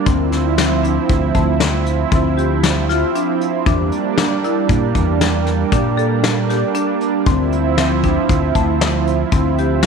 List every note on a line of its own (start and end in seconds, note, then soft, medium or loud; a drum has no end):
0.06 0.97 D2 medium
0.06 3.63 F3 medium
0.06 0.50 C4 medium
0.06 3.63 C4 medium
0.06 3.63 E4 medium
0.06 kick loud
0.06 closed hi-hat medium
0.32 snare soft
0.32 closed hi-hat medium
0.58 0.80 C4 medium
0.58 snare loud
0.58 closed hi-hat medium
0.83 1.28 D4 medium
0.83 closed hi-hat medium
1.09 1.32 D2 medium
1.09 kick medium
1.09 closed hi-hat medium
1.35 2.03 D2 medium
1.35 1.79 A3 medium
1.35 kick medium
1.35 closed hi-hat medium
1.60 snare medium
1.60 closed hi-hat medium
1.86 closed hi-hat medium
2.12 3.02 D2 medium
2.12 2.34 C4 medium
2.12 kick loud
2.12 closed hi-hat medium
2.37 2.82 G4 medium
2.37 closed hi-hat medium
2.63 snare loud
2.63 closed hi-hat medium
2.89 3.11 F4 medium
2.89 snare soft
2.89 closed hi-hat medium
3.15 3.59 D4 medium
3.15 closed hi-hat medium
3.41 closed hi-hat medium
3.66 3.89 E2 medium
3.66 7.23 G3 medium
3.66 7.22 A#3 medium
3.66 4.10 D4 medium
3.66 7.23 D4 medium
3.66 kick loud
3.66 closed hi-hat medium
3.92 closed hi-hat medium
4.18 4.40 D4 medium
4.18 snare loud
4.18 closed hi-hat medium
4.44 4.88 E4 medium
4.44 closed hi-hat medium
4.69 4.92 A#2 medium
4.69 kick medium
4.69 closed hi-hat medium
4.95 5.63 E2 loud
4.95 5.39 A#3 medium
4.95 kick medium
4.95 closed hi-hat medium
5.21 snare medium
5.21 closed hi-hat medium
5.47 snare soft
5.47 closed hi-hat medium
5.72 6.62 A#2 medium
5.72 5.94 D4 medium
5.72 kick loud
5.72 closed hi-hat medium
5.97 6.42 A4 medium
5.97 closed hi-hat medium
6.24 snare loud
6.24 closed hi-hat medium
6.50 6.71 G4 medium
6.50 snare soft
6.50 closed hi-hat medium
6.75 7.19 D4 medium
6.75 closed hi-hat medium
7.01 closed hi-hat medium
7.26 8.16 D2 medium
7.26 9.86 F3 medium
7.26 9.86 C4 medium
7.26 7.70 C4 medium
7.26 9.86 E4 medium
7.26 kick loud
7.26 closed hi-hat medium
7.52 closed hi-hat medium
7.78 8.00 C4 medium
7.78 snare loud
7.78 closed hi-hat medium
8.04 8.48 D4 medium
8.04 kick medium
8.04 closed hi-hat medium
8.29 8.52 D2 medium
8.29 kick medium
8.29 closed hi-hat medium
8.55 9.22 D2 medium
8.55 8.99 A3 medium
8.55 kick medium
8.55 closed hi-hat medium
8.81 snare loud
8.81 closed hi-hat medium
9.07 closed hi-hat medium
9.32 9.86 D2 medium
9.32 9.54 C4 medium
9.32 kick loud
9.32 closed hi-hat medium
9.58 9.86 G4 medium
9.58 closed hi-hat medium
9.83 snare loud
9.83 closed hi-hat medium